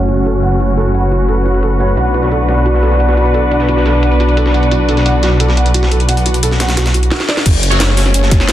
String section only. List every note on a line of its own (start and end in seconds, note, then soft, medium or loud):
0.00 1.97 C#4 medium
0.00 7.12 F#4 medium
0.00 0.33 A4 medium
0.00 7.12 F#5 medium
0.23 7.12 B4 medium
1.97 7.12 D4 medium
7.46 8.52 C#4 medium
8.21 8.52 A4 medium